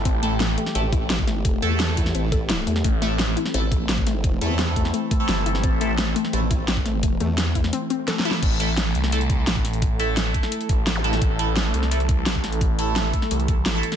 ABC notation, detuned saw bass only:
X:1
M:4/4
L:1/8
Q:1/4=172
K:Am
V:1 name="Detuned saw bass" clef=bass
A,,,3 z4 z | z8 | A,,,3 z4 z | z6 G,,,2 |
A,,,3 z4 z | z8 | A,,,3 C,,3 A,,,2- | A,,,3 z2 A,,,3 |
A,,,3 C,,3 A,,,2- | A,,,3 z C,,2 A,,, z |]